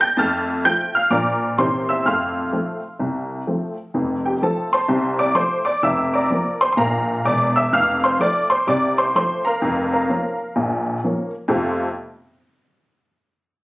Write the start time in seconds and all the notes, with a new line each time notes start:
0.01 G5 G6
0.17 F2 A3 A5 F6 A6
0.65 F3 A3 F4 G5 G6
0.95 F5 F6
1.10 A#2 F3 A#3 D4 F4 D5 A#5 D6
1.58 C3 E3 A#3 C#4 E4 C5 C6
1.89 E5 E6
2.05 F2 A3 F5 C6 F6
2.53 F3 A3 C4
2.99 C2
3.47 F3 A3 C4
3.94 F1 F2
4.25 G4 G5
4.42 F3 A3 C4 A4 A5
4.73 C5 A5 C6
4.88 C2 C3
5.19 D5 D6
5.34 F3 A3 C4 C5 C6
5.65 D5 D6
5.83 F1 F2 E5 E6
6.14 D5 A#5 D6
6.30 F3 A#3
6.61 C5 C6
6.73 C6
6.77 A#1 A#2 A#4 F5 A#5
7.25 E1 E2 D5 D6
7.56 E5 E6
7.72 F1 F2 F5 F6
8.04 C5 C6
8.20 F3 A3 C4 D5 D6
8.50 C5 C6
8.67 C2 C3 D5 D6
8.98 C5 C6
9.15 F3 A3 C4 C5 C6
9.45 A#4 F5 A#5
9.62 F1 F2
9.92 A#4 F5 A#5
10.09 F3 A#3 C#4
10.56 A#1 A#2
11.04 F3 A#3 C#4
11.48 F2 C3 A3 C4 F4 A4 F5